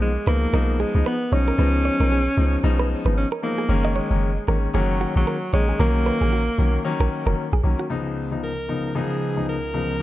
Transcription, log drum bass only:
0.00 0.18 B1 medium
0.27 0.47 C#2 loud
0.53 0.85 B1 loud
0.95 1.03 C#2 loud
1.32 1.52 B1 loud
1.58 1.90 C#2 loud
2.00 2.28 B1 loud
2.37 2.57 C#2 medium
2.64 2.95 B1 loud
3.05 3.25 G#1 loud
3.69 4.00 F#1 loud
4.11 4.39 F#1 loud
4.48 4.68 G#1 medium
4.74 5.06 F#1 medium
5.16 5.24 A#1 loud
5.53 5.73 A#1 loud
5.80 6.11 B1 loud
6.21 6.49 A#1 medium
6.58 6.78 B1 loud
7.00 7.08 A#1 medium
7.26 7.35 F#1 loud
7.53 7.61 A#1 loud
7.64 7.75 B1 medium

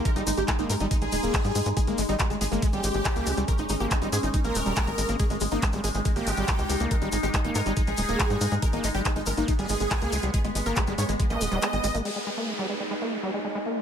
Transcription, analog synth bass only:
0.16 0.23 G#1 medium
0.27 0.33 G#1 loud
0.37 0.44 G#1 medium
0.59 0.66 G#1 medium
0.70 0.76 G#2 loud
0.80 0.87 G#1 loud
1.02 1.08 A#1 medium
1.12 1.19 D#1 loud
1.23 1.30 D#1 medium
1.45 1.51 G#2 medium
1.55 1.62 G#2 loud
1.66 1.73 G#2 medium
1.87 1.94 G#1 medium
1.98 2.05 G#1 loud
2.09 2.16 G#1 medium
2.30 2.37 G#1 medium
2.41 2.48 G#1 loud
2.52 2.58 G#1 loud
2.73 2.80 G#1 medium
2.84 2.91 G#1 loud
2.95 3.01 G#1 medium
3.16 3.23 C#2 medium
3.27 3.33 C#2 loud
3.37 3.44 C#2 medium
3.59 3.66 G#1 medium
3.70 3.76 G#1 loud
3.80 3.87 G#1 medium
4.02 4.08 G#1 medium
4.12 4.19 G#2 loud
4.23 4.30 G#1 loud
4.45 4.51 A#1 medium
4.55 4.62 D#1 loud
4.66 4.73 D#1 medium
4.87 4.94 G#1 medium
4.98 5.05 G#1 loud
5.09 5.16 G#1 medium
5.30 5.37 G#1 medium
5.41 5.48 G#1 loud
5.52 5.58 G#1 medium
5.73 5.80 G#1 medium
5.84 5.91 G#1 loud
5.95 6.01 G#1 loud
6.16 6.23 G#1 medium
6.27 6.33 G#1 loud
6.37 6.44 G#1 medium
6.59 6.66 C#2 medium
6.70 6.76 C#2 loud
6.80 6.87 C#2 medium
7.02 7.08 G#1 medium
7.12 7.19 G#1 loud
7.23 7.30 G#1 medium
7.45 7.51 G#1 medium
7.55 7.62 G#2 loud
7.66 7.73 G#1 loud
7.87 7.94 A#1 medium
7.98 8.05 D#1 loud
8.09 8.16 D#1 medium
8.30 8.37 G#2 medium
8.41 8.48 G#2 loud
8.52 8.58 G#2 medium
8.73 8.80 G#1 medium
8.84 8.91 G#1 loud
8.95 9.01 G#1 medium
9.16 9.23 G#1 medium
9.27 9.33 G#1 loud
9.37 9.44 G#1 loud
9.59 9.66 G#1 medium
9.70 9.76 G#1 loud
9.80 9.87 G#1 medium
10.02 10.08 C#2 medium
10.12 10.19 C#2 loud
10.23 10.30 C#2 medium
10.45 10.51 G#1 medium
10.55 10.62 G#1 loud
10.66 10.73 G#1 medium
10.87 10.94 G#1 medium
10.98 11.05 G#2 loud
11.09 11.16 G#1 loud
11.30 11.37 A#1 medium
11.41 11.48 D#1 loud
11.52 11.58 D#1 medium
11.73 11.80 G#1 medium
11.84 11.91 G#1 loud
11.95 12.01 G#1 medium

